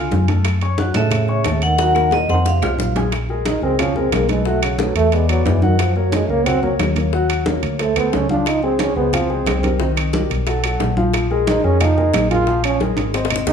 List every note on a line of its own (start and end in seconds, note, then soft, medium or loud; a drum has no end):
0.00 0.25 D3 medium
0.00 0.22 F4 medium
0.00 0.22 F5 medium
0.00 0.24 G#5 medium
0.00 0.23 F6 medium
0.11 0.89 F#2 medium
0.11 high bongo soft
0.11 low bongo medium
0.11 high conga medium
0.11 low timbale medium
0.28 0.56 A3 medium
0.28 0.56 A4 medium
0.28 0.56 A5 medium
0.28 high bongo soft
0.28 high conga medium
0.28 high timbale medium
0.45 high bongo medium
0.45 high conga soft
0.45 high timbale medium
0.45 claves medium
0.61 0.76 C#4 medium
0.61 0.76 C#5 medium
0.61 0.76 C#6 medium
0.61 high bongo soft
0.61 high conga soft
0.61 high timbale medium
0.78 0.92 F#4 medium
0.78 0.92 F#5 medium
0.78 0.93 F#6 medium
0.78 high bongo medium
0.78 high conga medium
0.94 1.42 A2 medium
0.94 1.58 C#3 medium
0.94 1.23 A3 medium
0.94 1.23 A4 medium
0.94 1.58 E5 medium
0.94 1.23 A5 medium
0.94 high conga medium
0.94 high timbale medium
1.11 high bongo medium
1.11 high conga soft
1.11 low conga medium
1.11 high timbale medium
1.11 claves medium
1.28 1.42 C#4 medium
1.28 1.42 C#5 medium
1.28 1.42 C#6 medium
1.28 high bongo soft
1.28 high conga soft
1.44 2.23 D#2 medium
1.44 1.73 A3 medium
1.44 1.73 A4 medium
1.44 1.73 A5 medium
1.44 high bongo soft
1.44 low bongo medium
1.44 high conga soft
1.44 high timbale medium
1.44 low timbale medium
1.44 claves medium
1.62 1.78 D#3 medium
1.62 1.78 F#5 loud
1.62 high bongo soft
1.62 high conga soft
1.62 high timbale medium
1.78 2.10 D#3 medium
1.78 1.92 F#3 medium
1.78 1.93 F#4 medium
1.78 2.13 F#5 loud
1.78 1.93 F#5 medium
1.78 high bongo loud
1.78 high conga soft
1.78 high timbale medium
1.94 2.23 A#3 medium
1.94 2.23 A#4 medium
1.94 2.23 A#5 medium
1.94 high bongo medium
1.94 high conga soft
1.94 claves medium
2.11 2.20 A#2 medium
2.11 2.21 D#5 medium
2.11 high bongo loud
2.11 high conga medium
2.11 high timbale medium
2.28 2.60 F2 medium
2.28 2.38 D#3 medium
2.28 2.56 C4 medium
2.28 2.57 C5 medium
2.28 2.37 F#5 medium
2.28 2.57 C6 medium
2.28 high bongo medium
2.45 2.93 C3 medium
2.45 2.93 F5 medium
2.45 low bongo medium
2.45 high conga soft
2.45 low timbale medium
2.62 2.77 C2 medium
2.62 2.90 F4 medium
2.62 2.90 F5 medium
2.62 2.90 F6 medium
2.62 low bongo medium
2.62 high conga soft
2.62 low timbale loud
2.62 claves medium
2.79 3.56 A#1 medium
2.79 low bongo loud
2.79 high conga medium
2.96 3.09 G#3 medium
2.96 3.10 G#4 medium
2.96 3.10 G#5 medium
2.96 low bongo medium
2.96 high conga medium
2.96 low timbale medium
3.12 high bongo medium
3.12 high conga soft
3.12 high timbale medium
3.12 claves medium
3.29 3.57 G#3 medium
3.29 3.57 G#4 medium
3.29 3.57 A#4 medium
3.29 high conga soft
3.46 3.62 D#4 medium
3.46 high bongo medium
3.46 high conga medium
3.46 high timbale medium
3.46 low timbale medium
3.62 4.09 C#2 medium
3.62 3.76 G#3 medium
3.62 3.81 C4 medium
3.62 3.76 G#4 medium
3.62 3.76 A#4 medium
3.62 high conga soft
3.79 3.93 F3 medium
3.79 3.96 C#4 medium
3.79 3.93 F4 medium
3.79 3.93 F5 medium
3.79 high bongo medium
3.79 high conga soft
3.79 low conga medium
3.79 high timbale loud
3.79 claves medium
3.96 4.23 G#3 medium
3.96 4.15 C4 medium
3.96 4.23 G#4 medium
3.96 4.24 A#4 medium
3.96 high conga soft
3.96 low conga medium
4.12 4.90 B1 medium
4.12 4.29 A#3 medium
4.12 high bongo medium
4.12 low bongo medium
4.12 high conga medium
4.12 high timbale medium
4.12 low timbale medium
4.12 claves medium
4.29 4.48 G#3 medium
4.29 4.43 A3 medium
4.29 4.43 A4 medium
4.29 4.43 B4 medium
4.29 high conga medium
4.29 high timbale medium
4.45 4.73 F#3 medium
4.45 4.63 A3 medium
4.45 4.73 F#4 medium
4.45 4.74 F#5 medium
4.45 high bongo medium
4.45 high conga soft
4.62 4.81 C#3 medium
4.62 high bongo soft
4.62 high conga soft
4.62 high timbale medium
4.62 claves medium
4.79 4.96 F#3 medium
4.79 5.06 A3 medium
4.79 5.07 A4 medium
4.79 5.07 B4 medium
4.79 high bongo medium
4.79 high conga medium
4.79 low timbale medium
4.95 5.42 E2 medium
4.95 5.15 A3 loud
4.95 high bongo soft
4.95 high timbale medium
5.12 5.29 G#3 medium
5.12 5.26 B3 medium
5.12 5.27 B4 medium
5.12 5.27 D5 medium
5.12 high bongo medium
5.12 high conga soft
5.12 high timbale medium
5.29 5.48 F#3 medium
5.29 5.57 B3 medium
5.29 5.57 B4 medium
5.29 5.57 D5 medium
5.29 high conga soft
5.29 high timbale medium
5.29 claves medium
5.45 6.24 F#2 medium
5.45 5.64 E3 medium
5.45 high bongo medium
5.45 low bongo medium
5.45 high conga medium
5.45 low timbale medium
5.62 5.82 D#3 medium
5.62 5.90 F#3 medium
5.62 5.90 F#4 medium
5.62 5.90 F#5 medium
5.62 high bongo soft
5.62 high conga medium
5.79 5.96 F3 medium
5.79 high bongo medium
5.79 high conga soft
5.79 high timbale medium
5.79 claves medium
5.96 6.14 F#3 medium
5.96 6.23 A#3 medium
5.96 6.24 A#4 medium
5.96 6.24 C#5 medium
5.96 high conga soft
6.12 6.31 G#3 medium
6.12 high bongo medium
6.12 high conga medium
6.12 high timbale medium
6.12 low timbale medium
6.29 6.76 C#2 medium
6.29 6.48 A#3 medium
6.29 6.43 A#3 medium
6.29 6.44 A#4 medium
6.29 6.44 C#5 medium
6.29 high conga soft
6.46 6.60 F#3 medium
6.46 6.62 C4 loud
6.46 6.60 F#4 medium
6.46 6.60 F#5 medium
6.46 high bongo medium
6.46 high conga soft
6.46 low conga medium
6.46 high timbale medium
6.46 claves medium
6.63 6.73 F#3 medium
6.63 6.90 A#3 medium
6.63 6.91 A#4 medium
6.63 6.91 C#5 medium
6.63 high conga soft
6.63 low conga medium
6.79 7.57 D#2 medium
6.79 high bongo medium
6.79 low bongo medium
6.79 high conga medium
6.79 high timbale medium
6.79 low timbale medium
6.79 claves medium
6.96 7.10 A#3 medium
6.96 7.11 A#4 medium
6.96 7.11 C#5 medium
6.96 high conga medium
6.96 high timbale medium
7.13 7.41 F#3 medium
7.13 7.41 F#4 medium
7.13 7.41 F#5 medium
7.13 high bongo medium
7.13 high conga soft
7.29 high bongo soft
7.29 high conga soft
7.29 high timbale loud
7.29 claves medium
7.46 7.74 A#3 medium
7.46 7.75 A#4 medium
7.46 7.75 C#5 medium
7.46 high bongo medium
7.46 high conga loud
7.46 low timbale medium
7.63 7.94 D2 medium
7.63 high bongo soft
7.63 high timbale medium
7.79 7.94 A3 medium
7.79 7.96 A3 medium
7.79 7.94 A4 medium
7.79 7.94 C5 medium
7.79 high bongo medium
7.79 high conga soft
7.79 high timbale medium
7.96 8.12 D2 medium
7.96 8.24 A3 medium
7.96 8.15 B3 medium
7.96 8.24 A4 medium
7.96 8.25 C5 medium
7.96 high conga soft
7.96 high timbale medium
7.96 claves medium
8.13 8.91 C#2 medium
8.13 8.30 C#4 medium
8.13 high bongo medium
8.13 low bongo medium
8.13 high conga medium
8.13 low timbale medium
8.29 8.58 F3 medium
8.29 8.49 D4 medium
8.29 8.58 F4 medium
8.29 8.58 F5 medium
8.29 high bongo soft
8.29 high conga medium
8.46 8.63 D#4 medium
8.46 high bongo medium
8.46 high conga soft
8.46 high timbale medium
8.46 claves medium
8.62 8.91 G#3 medium
8.62 8.81 C4 medium
8.62 8.91 G#4 medium
8.62 8.91 C5 medium
8.62 high conga soft
8.79 8.95 C#4 medium
8.79 high bongo medium
8.79 high conga medium
8.79 high timbale medium
8.79 low timbale medium
8.96 9.43 C#2 medium
8.96 9.10 G#3 medium
8.96 9.15 B3 medium
8.96 9.11 G#4 medium
8.96 9.11 C5 medium
8.96 high conga soft
9.13 9.27 F3 medium
9.13 10.14 C4 medium
9.13 9.27 F4 medium
9.13 9.27 F5 medium
9.13 high bongo medium
9.13 high conga soft
9.13 low conga medium
9.13 high timbale loud
9.13 claves medium
9.30 9.57 G#3 medium
9.30 9.57 G#4 medium
9.30 9.58 C5 medium
9.30 high conga soft
9.46 10.25 C2 medium
9.46 high bongo medium
9.46 low bongo medium
9.46 high conga medium
9.46 high timbale medium
9.46 low timbale medium
9.46 claves medium
9.63 9.77 G3 medium
9.63 9.77 G4 medium
9.63 9.77 A#4 medium
9.63 high conga medium
9.63 high timbale medium
9.80 10.08 D#3 medium
9.80 10.08 D#4 medium
9.80 10.08 D#5 medium
9.80 high bongo medium
9.80 high conga soft
9.96 high bongo soft
9.96 high conga soft
9.96 high timbale loud
9.96 claves medium
10.13 10.42 G3 medium
10.13 10.42 G4 medium
10.13 10.42 A#4 medium
10.13 high bongo medium
10.13 high conga loud
10.13 low timbale medium
10.30 10.77 B1 medium
10.30 high bongo soft
10.30 high timbale medium
10.47 10.61 F#3 medium
10.47 10.61 F#4 medium
10.47 10.62 A4 medium
10.47 high bongo medium
10.47 high conga soft
10.47 high timbale medium
10.64 10.91 F#3 medium
10.64 10.92 F#4 medium
10.64 10.92 A4 medium
10.64 high conga soft
10.64 high timbale loud
10.64 claves medium
10.80 11.58 A#1 loud
10.80 high bongo medium
10.80 low bongo medium
10.80 high conga medium
10.80 low timbale medium
10.97 11.24 F3 medium
10.97 11.25 F4 medium
10.97 11.25 F5 medium
10.97 high bongo soft
10.97 high conga medium
11.14 high bongo medium
11.14 high conga soft
11.14 high timbale medium
11.14 claves medium
11.31 11.58 G#3 medium
11.31 11.58 G#4 medium
11.31 11.58 A#4 medium
11.31 high conga soft
11.47 11.65 D#4 medium
11.47 high bongo medium
11.47 high conga loud
11.47 high timbale medium
11.47 low timbale medium
11.64 12.10 F2 medium
11.64 11.78 G#3 medium
11.64 11.83 C#4 loud
11.64 11.78 G#4 medium
11.64 11.78 A#4 medium
11.64 high conga soft
11.80 11.94 F3 medium
11.80 12.30 D#4 medium
11.80 11.94 F4 medium
11.80 11.95 F5 medium
11.80 high bongo medium
11.80 high conga soft
11.80 low conga medium
11.80 high timbale loud
11.80 claves medium
11.98 12.25 G#3 medium
11.98 12.25 G#4 medium
11.98 12.25 A#4 medium
11.98 high conga soft
11.98 low conga medium
12.14 12.92 A#1 loud
12.14 high bongo medium
12.14 low bongo medium
12.14 high conga medium
12.14 high timbale medium
12.14 low timbale medium
12.14 claves medium
12.31 12.44 G#3 medium
12.31 12.62 F4 loud
12.31 12.45 G#4 medium
12.31 12.45 A#4 medium
12.31 high conga medium
12.31 high timbale medium
12.47 12.75 F3 medium
12.47 12.75 F4 medium
12.47 12.75 F5 medium
12.47 high bongo medium
12.47 high conga soft
12.64 12.80 C#4 loud
12.64 high bongo soft
12.64 high conga soft
12.64 high timbale loud
12.64 claves medium
12.80 13.09 G#3 medium
12.80 13.09 G#4 medium
12.80 13.09 A#4 medium
12.80 high bongo medium
12.80 high conga medium
12.80 low timbale medium
12.97 13.44 G#1 medium
12.97 high bongo soft
12.97 high conga medium
12.97 high timbale medium
13.14 13.28 C4 medium
13.14 13.28 C5 medium
13.14 13.29 D#5 medium
13.14 high bongo medium
13.14 high timbale medium
13.25 high bongo loud
13.30 13.53 C4 medium
13.30 13.53 C5 medium
13.30 13.53 D#5 medium
13.30 low conga medium
13.30 high timbale medium
13.30 claves medium
13.36 low bongo medium
13.47 13.53 C#2 medium
13.47 13.53 D#4 loud
13.47 low bongo loud
13.47 low conga medium
13.47 low timbale medium